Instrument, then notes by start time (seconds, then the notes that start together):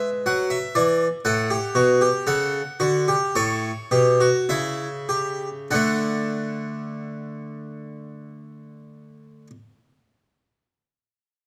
harpsichord
Already playing: G#3 B4
0.26 F#3 F#5
0.50 E5
0.75 E3 D5
1.25 A2 A4 F#5
1.50 G4
1.75 B2 F#4
2.01 G4
2.27 C#3 A4 F#5
2.80 D3 F#4
3.08 G4
3.35 A2 A4 C#5
3.91 B2 G4
4.21 F#4
4.49 C#3 E4 E5
5.09 G4
5.71 D3 A3 D4 A4 F#5